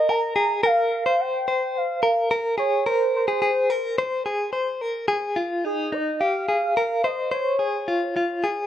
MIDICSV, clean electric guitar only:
0, 0, Header, 1, 2, 480
1, 0, Start_track
1, 0, Key_signature, -4, "major"
1, 0, Tempo, 556586
1, 559, Time_signature, 4, 2, 24, 8
1, 7474, End_track
2, 0, Start_track
2, 0, Title_t, "Clean electric guitar"
2, 0, Program_c, 0, 27
2, 79, Note_on_c, 0, 70, 80
2, 305, Note_off_c, 0, 70, 0
2, 308, Note_on_c, 0, 68, 79
2, 543, Note_off_c, 0, 68, 0
2, 547, Note_on_c, 0, 70, 103
2, 890, Note_off_c, 0, 70, 0
2, 914, Note_on_c, 0, 72, 88
2, 1254, Note_off_c, 0, 72, 0
2, 1275, Note_on_c, 0, 72, 76
2, 1727, Note_off_c, 0, 72, 0
2, 1749, Note_on_c, 0, 70, 79
2, 1982, Note_off_c, 0, 70, 0
2, 1992, Note_on_c, 0, 70, 90
2, 2219, Note_off_c, 0, 70, 0
2, 2222, Note_on_c, 0, 68, 78
2, 2466, Note_off_c, 0, 68, 0
2, 2470, Note_on_c, 0, 70, 101
2, 2811, Note_off_c, 0, 70, 0
2, 2828, Note_on_c, 0, 68, 89
2, 2938, Note_off_c, 0, 68, 0
2, 2948, Note_on_c, 0, 68, 98
2, 3191, Note_off_c, 0, 68, 0
2, 3191, Note_on_c, 0, 70, 77
2, 3432, Note_off_c, 0, 70, 0
2, 3435, Note_on_c, 0, 72, 73
2, 3668, Note_off_c, 0, 72, 0
2, 3671, Note_on_c, 0, 68, 81
2, 3901, Note_off_c, 0, 68, 0
2, 3904, Note_on_c, 0, 72, 77
2, 4151, Note_off_c, 0, 72, 0
2, 4151, Note_on_c, 0, 70, 70
2, 4378, Note_off_c, 0, 70, 0
2, 4382, Note_on_c, 0, 68, 88
2, 4624, Note_on_c, 0, 65, 73
2, 4629, Note_off_c, 0, 68, 0
2, 4869, Note_off_c, 0, 65, 0
2, 4869, Note_on_c, 0, 63, 78
2, 5099, Note_off_c, 0, 63, 0
2, 5109, Note_on_c, 0, 63, 68
2, 5353, Note_off_c, 0, 63, 0
2, 5353, Note_on_c, 0, 67, 72
2, 5589, Note_off_c, 0, 67, 0
2, 5593, Note_on_c, 0, 68, 70
2, 5835, Note_off_c, 0, 68, 0
2, 5839, Note_on_c, 0, 70, 73
2, 6070, Note_off_c, 0, 70, 0
2, 6073, Note_on_c, 0, 72, 74
2, 6298, Note_off_c, 0, 72, 0
2, 6308, Note_on_c, 0, 72, 96
2, 6543, Note_off_c, 0, 72, 0
2, 6547, Note_on_c, 0, 68, 74
2, 6793, Note_off_c, 0, 68, 0
2, 6795, Note_on_c, 0, 65, 84
2, 7031, Note_off_c, 0, 65, 0
2, 7041, Note_on_c, 0, 65, 77
2, 7276, Note_on_c, 0, 68, 76
2, 7281, Note_off_c, 0, 65, 0
2, 7474, Note_off_c, 0, 68, 0
2, 7474, End_track
0, 0, End_of_file